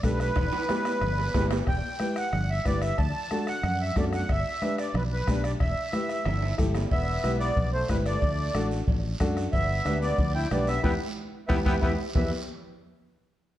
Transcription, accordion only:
0.04 B4
0.21 B4
1.68 G5
2.17 F#5
2.50 E5
2.67 D5
2.82 E5
2.98 A5
3.48 F#5
3.81 E5
3.98 D5
4.14 F#5
4.31 E5
4.79 D5
4.96 B4
5.13 B4
5.44 D5
5.61 E5
6.92 E5
7.40 D5
7.73 C5
7.90 B4
8.06 D5
9.52 E5
10.02 D5
10.35 G5
10.52 D5
10.68 E5
10.84 B4 E5 G5
11.48 B4 E5 G5
11.65 B4 E5 G5
11.82 B4 E5 G5
12.15 E5

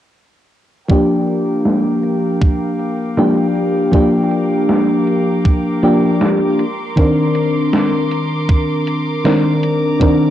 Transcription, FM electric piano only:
0.89 F3 A#3 D4 G4
3.17 F3 A#3 D4 G4
3.92 F3 A#3 D4 G4
5.83 F3 A#3 D4 G4
6.96 D#3 C4 D4 A#4
9.24 D#3 C4 D4 A#4
10.00 D#3 C4 D4 A#4

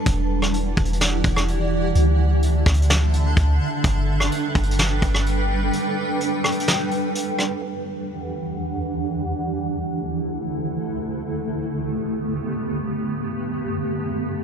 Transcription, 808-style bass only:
0.06 E1
0.77 E1
1.24 E1
1.95 D2
2.66 D2
3.37 D2
3.84 G1
4.55 G1
5.02 G1

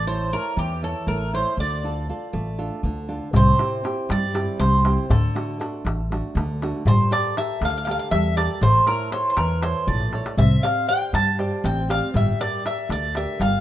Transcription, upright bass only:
Already playing: A1
0.57 E2
1.07 A1
1.57 D2
2.33 A1
2.83 D2
3.33 C2
4.10 G2
4.60 C2
5.10 D2
5.85 A1
6.35 D2
6.85 G1
7.61 D2
8.11 E2
8.61 A1
9.37 E2
9.87 A#1
10.37 C2
11.13 G2
11.64 A1
12.14 G1
12.89 D2
13.40 G1

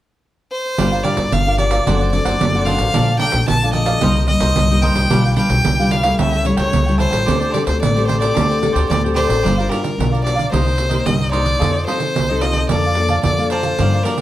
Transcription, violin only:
0.52 C5
1.04 D5
1.32 F5
1.58 D5
2.12 D5
2.66 F5
3.19 G5
3.48 A5
3.74 D#5
4.29 D#5
4.82 G5
5.36 G5
5.91 F5
6.20 E5
6.46 C#5
6.58 C#5
7.00 C5
7.54 D5
7.67 C5
7.82 D5
8.08 C5
8.20 D5
8.89 D5
9.16 C5
9.69 A#4
10.24 D5
10.52 C5
11.06 D#5
11.32 D5
11.87 C5
12.42 D#5
12.69 D5
13.25 D5
13.51 C5
14.04 A#4

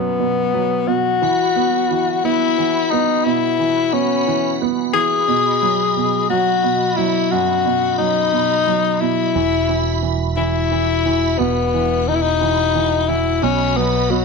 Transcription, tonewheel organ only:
1.23 F#4 F#5 B5
5.29 D#5
9.36 E5
11.40 F#5
13.42 F#4 D#5 B5

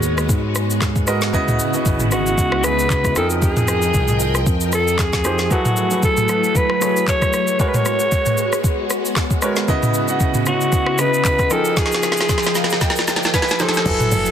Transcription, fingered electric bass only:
Already playing: D#2
0.29 G#2
1.34 C#2
1.86 G#1
2.38 C#2
3.16 F2
3.94 C2
4.47 F2

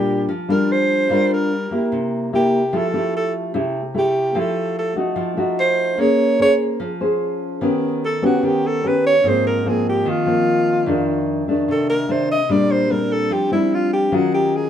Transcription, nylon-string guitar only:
Already playing: A#2 G3 D4 F4
0.29 F3
0.49 G3 D4 F4
1.10 G3 D4 F4 A#4
1.71 A#3 E4 G4
1.92 C3
2.33 A#3 E4 G4
2.73 F3 A3 E4 G4
2.93 A3 E4 G4
3.54 C3 A3 E4 G4
3.94 A3 E4 G4
4.35 F3 A3 E4 G4
4.96 A3 D#4 F#4
5.16 F3
5.37 A3 D#4 F#4
5.98 A#3 C#4 G#4
6.39 C#4 G#4 C5
6.80 F3
7.00 C#4 G#4 C5
7.61 D#3 B3 C#4 G4
8.22 B3 C#4 G4
8.43 D#3
8.84 B3 C#4 G4
9.24 G#2 F3 A#3 C4
9.65 F3 A#3 C4
10.05 D#3
10.26 F3 A#3 C4
10.86 F2 D#3 A3 D4
11.48 D#3 A3 D4
11.68 C3
12.08 D#3 A3 D4
12.49 A#2 G3 C4 D4
12.90 G3 C4 D4
13.31 F3
13.51 G3 C4 D4
14.12 D#3 F#3 C#4 F4

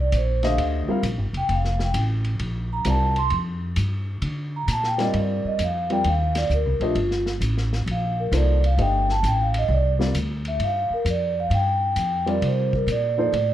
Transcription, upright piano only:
0.43 D3 A3 G4 C5 D#5
0.88 G3 C4 F4 A#4 F5
2.85 G3 C4 F4 A#4 D5
4.98 G3 C4 F4 A#4 D5
5.90 G3 C4 F4 A#4 D5
6.81 A3 D4 G4 C5 D#5
8.32 F3 A#3 D#4 A4 C5
8.78 A3 D4 G4 C5 D#5
9.99 G3 C4 F4 A#4 D5
12.26 G3 C4 F4 A#4 D5
13.17 F3 A#3 D#4 A4 C5

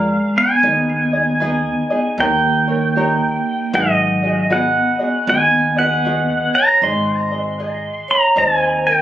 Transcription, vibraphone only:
Already playing: G#3
0.36 B3
2.19 A#3
3.74 F#3
4.52 B3
5.30 B3
5.78 B4
6.54 C#5
6.82 D#5
8.08 C#5
8.36 C5
8.87 A#4

